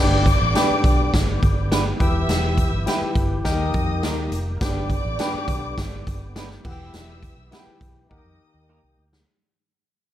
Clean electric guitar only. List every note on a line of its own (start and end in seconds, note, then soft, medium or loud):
0.56 0.65 B3 medium
0.56 0.66 D4 medium
0.56 0.66 G4 medium
0.56 0.66 B4 medium
1.72 1.81 B3 medium
1.72 1.81 D4 medium
1.72 1.82 G4 medium
1.72 1.82 B4 medium
2.88 2.98 B3 medium
2.88 2.98 E4 medium
2.88 2.98 G4 loud
2.88 2.98 B4 medium
4.04 4.14 A#3 medium
4.04 4.14 D#4 medium
4.04 4.14 G4 medium
4.04 4.14 A#4 medium
5.20 5.30 B3 medium
5.20 5.30 D4 medium
5.20 5.30 G4 medium
5.20 5.30 B4 medium
6.37 6.46 B3 medium
6.37 6.46 D4 medium
6.37 6.47 G4 loud
6.37 6.47 B4 loud
7.52 7.62 B3 medium
7.52 7.62 E4 medium
7.52 7.63 G4 medium
7.52 7.63 B4 medium
8.69 8.79 A#3 medium
8.69 8.79 D#4 medium
8.69 8.79 G4 medium
8.69 8.80 A#4 medium